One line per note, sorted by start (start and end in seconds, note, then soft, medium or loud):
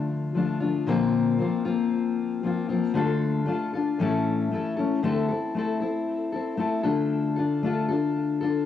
0.00 0.87 D3 medium
0.00 0.34 F3 soft
0.00 0.35 A3 soft
0.00 0.37 D4 medium
0.00 0.38 F4 medium
0.35 0.62 F3 medium
0.35 0.61 A3 medium
0.35 0.61 D4 medium
0.35 0.59 F4 medium
0.60 0.86 F3 soft
0.60 0.88 A3 soft
0.60 0.88 D4 soft
0.60 0.87 F4 medium
0.86 1.40 A#2 medium
0.86 1.44 D3 medium
0.86 1.39 F3 medium
0.86 1.39 A#3 medium
0.86 1.40 C4 medium
0.86 1.41 F4 medium
1.39 1.66 F3 medium
1.39 1.66 A#3 medium
1.39 1.65 C4 medium
1.39 1.64 F4 medium
1.65 2.42 F3 soft
1.65 2.43 A#3 medium
1.65 2.44 C4 medium
1.65 2.44 F4 medium
2.43 2.70 F3 soft
2.43 2.70 A#3 medium
2.43 2.69 C4 medium
2.43 2.68 F4 medium
2.69 2.95 F3 soft
2.69 2.95 A#3 medium
2.69 2.96 C4 medium
2.69 2.95 F4 medium
2.94 3.47 D3 medium
2.94 3.45 A3 medium
2.94 3.47 D4 medium
2.94 3.47 F4 medium
2.94 3.49 A4 medium
3.46 3.73 A3 medium
3.46 3.74 D4 medium
3.46 3.74 F4 medium
3.46 3.72 A4 medium
3.73 4.01 D4 soft
3.73 4.01 F4 medium
3.73 4.00 A4 medium
3.99 4.52 A2 medium
3.99 5.02 E3 medium
3.99 4.51 A3 medium
3.99 4.51 C#4 medium
3.99 4.53 E4 medium
3.99 4.54 A4 medium
4.51 4.78 A3 medium
4.51 4.78 C#4 medium
4.51 4.77 E4 medium
4.51 4.75 A4 medium
4.77 5.03 A3 soft
4.77 5.03 C#4 medium
4.77 5.04 E4 soft
4.77 5.04 A4 medium
5.03 5.30 D3 medium
5.03 5.30 A3 medium
5.03 5.30 C4 medium
5.03 5.29 E4 medium
5.03 5.27 A4 medium
5.29 5.55 C4 soft
5.29 5.56 E4 soft
5.29 5.56 A4 medium
5.55 5.82 A3 medium
5.55 5.82 C4 medium
5.55 5.80 E4 medium
5.55 5.79 A4 medium
5.80 6.34 C4 soft
5.80 6.33 E4 medium
5.80 6.32 A4 medium
6.32 6.57 C4 soft
6.32 6.58 E4 soft
6.32 6.59 A4 medium
6.57 6.84 A3 medium
6.57 6.84 C4 medium
6.57 6.84 E4 medium
6.57 6.82 A4 medium
6.83 8.66 D3 medium
6.83 7.38 A3 medium
6.83 7.39 D4 medium
6.83 7.37 F4 medium
6.83 7.35 A4 medium
7.36 7.63 D4 soft
7.36 7.64 F4 medium
7.36 7.63 A4 medium
7.63 7.90 A3 medium
7.63 7.90 D4 medium
7.63 7.89 F4 medium
7.63 7.87 A4 medium
7.88 8.44 D4 medium
7.88 8.42 F4 medium
7.88 8.39 A4 medium
8.41 8.66 D4 soft
8.41 8.66 F4 medium
8.41 8.66 A4 medium